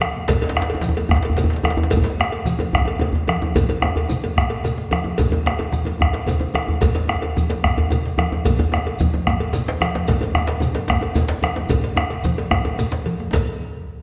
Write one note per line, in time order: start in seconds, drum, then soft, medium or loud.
0.01 bombo rim loud
0.01 cowbell soft
0.01 high conga medium
0.16 djembe slap soft
0.16 djembe tone medium
0.28 bombo rim soft
0.28 bombo low loud
0.28 cowbell medium
0.28 djembe slap loud
0.28 high conga soft
0.28 low conga medium
0.28 djembe bass medium
0.28 shekere medium
0.42 cowbell medium
0.42 djembe slap medium
0.42 djembe tone medium
0.49 djembe slap loud
0.56 bombo rim loud
0.56 djembe tone medium
0.58 djembe tone medium
0.62 djembe slap loud
0.70 cowbell medium
0.70 djembe slap soft
0.75 djembe tone medium
0.81 djembe slap medium
0.81 high conga medium
0.81 low conga medium
0.81 shekere medium
0.89 djembe tone medium
0.97 bombo rim soft
0.97 cowbell medium
0.97 djembe slap medium
0.97 djembe tone medium
1.09 bombo rim loud
1.09 bombo low loud
1.09 djembe bass loud
1.09 shekere soft
1.12 djembe bass medium
1.16 djembe slap medium
1.23 cowbell medium
1.23 djembe slap medium
1.30 djembe bass medium
1.37 cowbell medium
1.37 djembe slap medium
1.37 djembe tone medium
1.37 low conga medium
1.37 shekere medium
1.44 djembe bass loud
1.50 djembe slap medium
1.53 djembe slap medium
1.56 djembe slap medium
1.63 bombo rim medium
1.63 cowbell medium
1.63 high conga medium
1.63 djembe bass medium
1.63 shekere soft
1.70 djembe slap medium
1.77 djembe tone medium
1.77 djembe bass loud
1.83 djembe slap medium
1.90 bombo rim soft
1.90 bombo low loud
1.90 cowbell medium
1.90 djembe slap medium
1.90 high conga soft
1.90 low conga medium
1.90 djembe bass medium
1.90 shekere medium
1.97 djembe bass medium
2.04 cowbell soft
2.04 djembe slap medium
2.06 djembe slap medium
2.20 bombo rim loud
2.20 djembe tone medium
2.32 cowbell medium
2.32 djembe slap soft
2.45 high conga medium
2.45 low conga medium
2.45 shekere medium
2.59 cowbell medium
2.59 djembe slap medium
2.59 djembe tone loud
2.61 bombo rim soft
2.61 djembe tone medium
2.73 bombo rim loud
2.73 bombo low loud
2.73 djembe bass medium
2.73 shekere soft
2.85 cowbell medium
2.85 djembe tone medium
2.99 cowbell soft
2.99 djembe tone loud
2.99 low conga medium
3.02 djembe tone medium
3.13 djembe slap medium
3.13 djembe bass medium
3.27 bombo rim loud
3.27 cowbell medium
3.27 djembe tone medium
3.27 high conga medium
3.27 shekere soft
3.42 djembe tone loud
3.42 djembe tone medium
3.55 bombo rim soft
3.55 bombo low loud
3.55 cowbell medium
3.55 high conga soft
3.55 djembe bass medium
3.55 low conga medium
3.55 djembe bass medium
3.55 shekere medium
3.69 cowbell medium
3.69 djembe tone medium
3.82 bombo rim loud
3.82 djembe tone loud
3.84 djembe tone medium
3.96 cowbell medium
3.96 djembe slap soft
3.96 djembe bass medium
4.09 djembe tone medium
4.09 high conga medium
4.09 low conga medium
4.09 shekere medium
4.24 bombo rim soft
4.24 cowbell medium
4.24 djembe slap medium
4.24 djembe tone medium
4.37 bombo rim loud
4.37 bombo low loud
4.37 djembe bass medium
4.37 shekere soft
4.50 cowbell medium
4.64 cowbell medium
4.64 djembe tone medium
4.64 low conga medium
4.64 shekere medium
4.78 djembe slap medium
4.91 bombo rim loud
4.91 cowbell medium
4.91 djembe tone loud
4.91 high conga medium
4.91 shekere soft
5.04 djembe tone medium
5.18 bombo rim soft
5.18 bombo low loud
5.18 cowbell medium
5.18 djembe tone medium
5.18 djembe bass medium
5.18 low conga medium
5.18 shekere medium
5.32 bombo rim soft
5.32 cowbell medium
5.32 djembe slap medium
5.32 djembe bass medium
5.46 bombo rim medium
5.46 djembe slap medium
5.46 djembe tone medium
5.59 cowbell medium
5.59 djembe slap soft
5.59 djembe tone loud
5.72 bombo rim soft
5.72 djembe slap soft
5.72 high conga medium
5.72 djembe tone medium
5.72 low conga medium
5.72 shekere medium
5.85 bombo rim soft
5.85 cowbell soft
5.85 djembe slap medium
5.85 djembe tone medium
5.85 shekere soft
5.99 bombo rim loud
5.99 bombo low loud
5.99 high conga soft
5.99 djembe bass medium
5.99 shekere soft
6.13 cowbell medium
6.13 djembe slap soft
6.13 djembe slap medium
6.26 cowbell medium
6.26 djembe slap soft
6.26 djembe tone medium
6.26 high conga soft
6.26 low conga medium
6.26 shekere medium
6.29 djembe tone loud
6.40 djembe slap medium
6.40 djembe tone medium
6.54 bombo rim medium
6.54 cowbell medium
6.54 high conga medium
6.54 djembe tone medium
6.67 bombo rim soft
6.67 djembe slap soft
6.67 djembe tone medium
6.67 djembe bass medium
6.81 bombo rim soft
6.81 bombo low loud
6.81 cowbell medium
6.81 djembe slap medium
6.81 high conga soft
6.81 djembe bass medium
6.81 low conga medium
6.81 shekere medium
6.95 cowbell medium
6.95 djembe slap medium
6.95 djembe tone loud
7.08 bombo rim medium
7.08 djembe tone medium
7.22 cowbell medium
7.22 djembe slap soft
7.22 djembe tone medium
7.37 high conga medium
7.37 low conga medium
7.37 djembe bass medium
7.37 shekere medium
7.49 bombo rim soft
7.49 cowbell medium
7.49 djembe slap medium
7.49 djembe tone medium
7.63 bombo rim loud
7.63 bombo low loud
7.63 djembe bass medium
7.63 shekere soft
7.78 cowbell soft
7.78 djembe bass medium
7.90 cowbell medium
7.90 djembe tone medium
7.90 low conga medium
7.90 shekere medium
8.06 djembe slap medium
8.18 bombo rim loud
8.18 cowbell medium
8.18 high conga medium
8.18 djembe bass loud
8.18 shekere soft
8.32 djembe tone medium
8.45 bombo rim soft
8.45 bombo low loud
8.45 cowbell medium
8.45 high conga soft
8.45 djembe bass loud
8.45 low conga medium
8.45 shekere medium
8.59 cowbell soft
8.59 djembe slap medium
8.59 djembe bass loud
8.72 bombo rim loud
8.72 djembe tone loud
8.72 djembe tone medium
8.87 cowbell soft
8.87 djembe slap soft
8.99 high conga medium
8.99 djembe bass loud
8.99 low conga medium
8.99 shekere medium
9.14 bombo rim soft
9.14 djembe slap medium
9.14 djembe tone medium
9.27 bombo rim loud
9.27 bombo low loud
9.27 djembe bass medium
9.27 shekere soft
9.40 cowbell medium
9.53 cowbell medium
9.53 djembe tone medium
9.53 low conga medium
9.53 shekere medium
9.68 djembe slap medium
9.68 djembe slap loud
9.81 bombo rim loud
9.81 cowbell medium
9.81 djembe tone medium
9.81 high conga medium
9.81 shekere soft
9.95 djembe slap medium
9.95 djembe tone medium
10.07 bombo rim soft
10.07 bombo low loud
10.07 cowbell medium
10.07 djembe slap medium
10.07 high conga soft
10.07 low conga medium
10.07 djembe bass medium
10.07 shekere medium
10.21 cowbell soft
10.21 djembe slap medium
10.21 djembe tone medium
10.34 bombo rim loud
10.34 djembe tone medium
10.34 djembe bass medium
10.47 cowbell soft
10.47 djembe slap loud
10.50 djembe slap soft
10.60 djembe tone medium
10.60 high conga medium
10.60 low conga medium
10.60 shekere medium
10.75 bombo rim soft
10.75 cowbell medium
10.75 djembe slap medium
10.76 djembe slap medium
10.76 djembe tone medium
10.88 bombo rim loud
10.88 bombo low loud
10.88 djembe slap medium
10.88 djembe bass medium
10.88 shekere soft
11.01 cowbell medium
11.01 djembe tone medium
11.15 cowbell medium
11.15 djembe tone medium
11.15 djembe bass medium
11.15 low conga medium
11.15 shekere medium
11.28 djembe slap loud
11.31 djembe slap medium
11.42 bombo rim loud
11.42 cowbell medium
11.42 djembe tone medium
11.42 high conga medium
11.42 shekere soft
11.56 djembe slap medium
11.56 djembe tone medium
11.69 bombo low loud
11.69 cowbell medium
11.69 high conga soft
11.69 djembe tone loud
11.69 low conga medium
11.69 djembe bass medium
11.69 shekere medium
11.84 cowbell soft
11.84 djembe slap medium
11.96 bombo rim loud
11.96 djembe slap soft
11.96 djembe tone loud
11.96 djembe tone medium
12.10 bombo rim soft
12.10 cowbell soft
12.10 djembe slap soft
12.10 high conga soft
12.10 shekere soft
12.23 djembe slap soft
12.23 djembe tone loud
12.23 high conga medium
12.23 low conga medium
12.23 shekere medium
12.38 cowbell medium
12.38 djembe slap medium
12.38 djembe tone medium
12.38 shekere soft
12.51 bombo rim loud
12.51 bombo low loud
12.51 djembe tone loud
12.51 djembe bass medium
12.64 bombo rim soft
12.64 cowbell soft
12.64 djembe tone loud
12.64 shekere soft
12.79 cowbell soft
12.79 djembe slap soft
12.79 djembe tone medium
12.79 low conga medium
12.79 shekere medium
12.92 djembe slap loud
12.92 djembe slap medium
12.92 shekere soft
13.06 cowbell soft
13.06 djembe slap soft
13.06 high conga medium
13.20 bombo rim soft
13.20 djembe tone medium
13.33 bombo low loud
13.33 cowbell medium
13.33 djembe slap loud
13.33 djembe bass medium
13.33 low conga medium
13.33 shekere medium